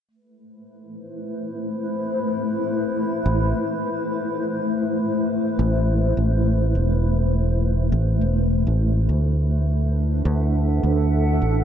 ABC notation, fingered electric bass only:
X:1
M:4/4
L:1/16
Q:"Swing 16ths" 1/4=103
K:Ador
V:1 name="Fingered electric bass" clef=bass
z16 | z6 A,,,2 z8 | z6 A,,,4 A,,,4 E,,,2- | E,,,6 A,,,2 E,,,3 A,,,3 D,,2- |
D,,6 D,,4 D,,4 A,,,2 |]